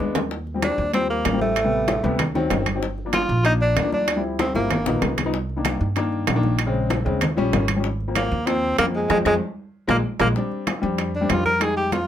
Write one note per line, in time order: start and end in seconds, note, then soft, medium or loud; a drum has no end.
0.00 0.73 D#2 medium
0.00 0.19 G#3 medium
0.00 0.19 B3 medium
0.00 0.20 D4 medium
0.00 high conga medium
0.15 low bongo medium
0.15 high conga medium
0.15 low timbale medium
0.15 claves medium
0.31 high bongo medium
0.31 high conga soft
0.47 high conga soft
0.54 0.82 F3 medium
0.54 0.82 G3 medium
0.54 0.83 C4 medium
0.62 0.92 D4 medium
0.62 high bongo medium
0.62 high conga medium
0.62 high timbale medium
0.62 low timbale medium
0.62 claves medium
0.78 1.22 D#2 medium
0.78 high conga soft
0.93 1.21 F3 medium
0.93 1.21 G3 medium
0.93 1.22 C4 medium
0.93 1.09 C4 loud
0.93 high bongo medium
0.93 high conga soft
0.93 high timbale medium
1.10 1.39 A#3 medium
1.10 high conga soft
1.25 1.98 A1 medium
1.25 high bongo medium
1.25 low bongo medium
1.25 high conga medium
1.25 high timbale medium
1.25 low timbale medium
1.25 claves medium
1.32 1.55 F3 medium
1.32 1.55 G3 medium
1.32 1.55 C4 medium
1.41 2.31 A3 medium
1.41 high conga medium
1.56 high bongo medium
1.56 high conga soft
1.56 high timbale medium
1.56 claves medium
1.64 1.92 C3 medium
1.64 1.92 G3 medium
1.64 1.92 B3 medium
1.73 high conga soft
1.88 high bongo soft
1.88 high conga medium
1.88 high timbale medium
1.88 low timbale medium
2.03 2.48 D2 loud
2.03 2.19 C3 medium
2.03 2.20 G3 medium
2.03 2.20 B3 medium
2.03 high bongo soft
2.03 high conga soft
2.19 high bongo medium
2.19 high conga soft
2.19 low conga medium
2.19 high timbale medium
2.19 claves medium
2.35 2.63 D#3 loud
2.35 2.63 F#3 medium
2.35 2.63 C4 loud
2.35 high bongo soft
2.35 high conga soft
2.35 low conga medium
2.50 3.24 G1 medium
2.50 high bongo medium
2.50 low bongo medium
2.50 high conga medium
2.50 high timbale medium
2.50 low timbale medium
2.66 high bongo soft
2.66 high conga medium
2.66 high timbale medium
2.66 claves medium
2.75 2.82 D#3 medium
2.75 2.83 F#3 medium
2.75 2.83 C4 medium
2.82 high bongo medium
2.82 high conga soft
2.98 high conga soft
3.05 3.33 F3 medium
3.05 3.33 A#3 medium
3.05 3.33 D4 medium
3.13 3.43 F4 medium
3.13 high bongo medium
3.13 high conga medium
3.13 high timbale medium
3.13 low timbale medium
3.13 claves medium
3.29 3.73 A#1 loud
3.29 high conga soft
3.44 3.72 F3 medium
3.44 3.72 A#3 medium
3.44 3.72 D4 medium
3.44 3.53 D#4 medium
3.44 high bongo medium
3.44 high conga soft
3.44 high timbale medium
3.61 3.90 D4 medium
3.61 high conga soft
3.76 4.49 D2 medium
3.76 high bongo medium
3.76 low bongo medium
3.76 high conga medium
3.76 high timbale medium
3.76 low timbale medium
3.76 claves medium
3.83 4.06 F3 medium
3.83 4.06 A#3 medium
3.83 4.06 D4 medium
3.92 4.22 D4 medium
3.92 high conga medium
4.08 high bongo medium
4.08 high conga soft
4.08 high timbale loud
4.08 claves medium
4.16 4.43 F3 medium
4.16 4.43 G3 medium
4.16 4.44 C4 medium
4.16 4.44 E4 medium
4.24 high conga soft
4.39 4.54 C4 medium
4.39 high bongo medium
4.39 high conga medium
4.39 high timbale medium
4.39 low timbale medium
4.54 4.84 G1 medium
4.54 4.70 F3 medium
4.54 4.70 G3 medium
4.54 5.14 A#3 medium
4.54 4.70 C4 medium
4.54 4.71 E4 medium
4.54 high bongo medium
4.54 high conga soft
4.71 high bongo medium
4.71 high conga soft
4.71 low conga medium
4.71 high timbale medium
4.71 claves medium
4.86 5.01 A#1 medium
4.86 5.13 F3 medium
4.86 5.14 B3 medium
4.86 5.14 D#4 medium
4.86 low bongo loud
4.86 high conga soft
4.86 low conga medium
5.02 5.75 C2 medium
5.02 low bongo medium
5.02 high conga medium
5.02 high timbale medium
5.02 low timbale medium
5.18 low bongo medium
5.18 high conga medium
5.18 high timbale medium
5.18 claves medium
5.25 5.33 F3 medium
5.25 5.33 B3 medium
5.25 5.34 D#4 medium
5.34 high bongo medium
5.34 high conga soft
5.49 high conga soft
5.56 5.84 D#3 medium
5.56 5.85 A#3 medium
5.56 5.85 D4 medium
5.65 high bongo medium
5.65 high conga medium
5.65 high timbale medium
5.65 low timbale medium
5.65 claves medium
5.81 6.24 G2 medium
5.81 high conga soft
5.96 6.24 D#3 medium
5.96 6.24 A#3 medium
5.96 6.24 D4 medium
5.96 high bongo medium
5.96 high conga soft
5.96 high timbale medium
6.12 high conga soft
6.27 7.00 A#1 medium
6.27 high bongo medium
6.27 low bongo medium
6.27 high conga medium
6.27 high timbale medium
6.27 low timbale medium
6.27 claves medium
6.35 6.57 D#3 medium
6.35 6.58 A#3 medium
6.35 6.58 D4 loud
6.43 high conga medium
6.59 high bongo medium
6.59 high conga soft
6.59 high timbale medium
6.59 claves medium
6.66 6.94 C#3 medium
6.66 6.94 G#3 medium
6.66 6.94 C4 medium
6.74 high conga soft
6.90 high bongo medium
6.90 high conga medium
6.90 high timbale medium
6.90 low timbale medium
7.05 7.35 D#2 loud
7.05 7.21 C#3 medium
7.05 7.21 G#3 medium
7.05 7.22 C4 medium
7.05 high bongo soft
7.05 high conga soft
7.21 high bongo medium
7.21 high conga soft
7.21 low conga medium
7.21 high timbale medium
7.21 claves medium
7.37 7.52 A#1 medium
7.37 7.65 F3 loud
7.37 7.65 G3 medium
7.37 7.65 C#4 loud
7.37 high bongo soft
7.37 high conga soft
7.53 8.26 G#1 medium
7.53 high bongo medium
7.53 low bongo medium
7.53 high conga medium
7.53 high timbale medium
7.53 low timbale medium
7.68 high bongo soft
7.68 high conga medium
7.68 high timbale medium
7.68 claves medium
7.76 7.84 F3 medium
7.76 7.84 G3 medium
7.76 7.85 C#4 medium
7.84 high bongo medium
7.84 high conga soft
8.01 high conga soft
8.08 8.35 F3 medium
8.08 8.36 A#3 medium
8.08 8.36 C4 medium
8.15 8.48 A#3 medium
8.15 high bongo medium
8.15 high conga medium
8.15 high timbale medium
8.15 low timbale medium
8.15 claves medium
8.31 8.75 D#2 loud
8.31 high conga soft
8.46 8.74 F3 medium
8.46 8.74 A#3 medium
8.46 8.78 C4 loud
8.46 8.75 C4 medium
8.46 high bongo medium
8.46 high conga soft
8.46 high timbale medium
8.63 high conga soft
8.78 9.08 F2 medium
8.78 8.86 A#3 loud
8.78 high bongo medium
8.78 low bongo medium
8.78 high conga medium
8.78 high timbale loud
8.78 low timbale medium
8.78 claves medium
8.86 9.08 F3 medium
8.86 9.09 A#3 medium
8.86 9.09 C4 medium
8.96 9.10 G#3 medium
9.10 9.22 F2 medium
9.10 9.20 F3 medium
9.10 9.20 G#3 medium
9.10 9.18 G#3 loud
9.10 9.20 C4 medium
9.10 low bongo loud
9.10 high conga medium
9.10 high timbale medium
9.10 claves loud
9.25 9.37 F2 loud
9.25 9.36 F3 loud
9.25 9.36 G#3 medium
9.25 9.34 G#3 loud
9.25 9.36 C4 medium
9.25 low bongo medium
9.25 high conga loud
9.25 high timbale medium
9.25 claves medium
9.87 10.00 A#1 medium
9.87 9.98 F3 loud
9.87 9.98 G#3 loud
9.87 9.98 A#3 loud
9.87 9.97 A#3 medium
9.87 low bongo medium
9.87 high conga medium
9.87 high timbale medium
9.87 claves medium
10.20 10.32 A#1 medium
10.20 10.30 F3 medium
10.20 10.30 G#3 loud
10.20 10.30 A#3 medium
10.20 10.28 A#3 medium
10.20 low bongo medium
10.20 high conga loud
10.20 high timbale medium
10.20 claves medium
10.36 10.69 G3 medium
10.36 10.69 C4 medium
10.36 10.69 D4 medium
10.36 high bongo medium
10.36 high conga soft
10.51 high conga soft
10.67 high bongo medium
10.67 high conga medium
10.67 high timbale medium
10.67 low timbale medium
10.67 claves medium
10.82 11.27 F2 loud
10.82 11.10 G3 medium
10.82 11.10 C4 medium
10.82 11.10 D4 medium
10.82 high conga soft
10.98 high bongo medium
10.98 high conga soft
10.98 high timbale medium
11.15 11.33 D4 medium
11.15 high conga soft
11.21 11.49 G3 medium
11.21 11.49 C4 medium
11.21 11.50 D4 medium
11.29 12.03 F2 medium
11.29 11.45 F4 medium
11.29 high bongo medium
11.29 low bongo medium
11.29 high conga medium
11.29 high timbale medium
11.29 low timbale medium
11.29 claves medium
11.45 11.64 A#4 loud
11.45 high conga medium
11.60 11.94 G3 medium
11.60 11.94 G#3 medium
11.60 11.94 D#4 medium
11.60 11.76 G#4 medium
11.60 high bongo medium
11.60 high conga soft
11.60 high timbale medium
11.60 claves medium
11.77 11.94 G4 medium
11.77 high conga soft
11.92 12.07 F4 medium
11.92 high bongo medium
11.92 high conga medium
11.92 high timbale medium
11.92 low timbale medium